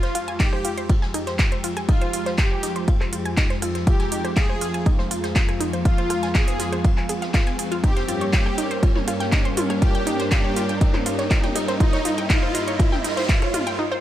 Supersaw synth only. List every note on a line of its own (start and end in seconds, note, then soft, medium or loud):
0.00 0.30 F4 loud
0.40 0.69 G4 medium
1.89 2.28 F4 loud
2.38 2.68 G4 medium
3.87 4.27 G4 loud
4.37 4.66 G#4 loud
5.85 6.25 F4 loud
6.35 6.65 G#4 medium
7.84 8.23 G4 loud
8.33 8.63 G4 loud
9.82 10.22 G4 loud
10.32 10.61 G4 loud
11.80 12.20 D#4 loud
12.30 12.60 F4 loud